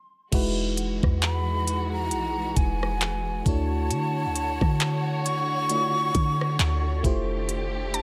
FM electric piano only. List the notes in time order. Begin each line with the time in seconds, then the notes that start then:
0.32 G#3 D#4 E4 F#4 B4
3.45 A3 D4 E4 F#4 C#5
5.70 A3 D4 E4 F4 C#5
5.77 F#4
7.03 A3 E4 F4 G4 C5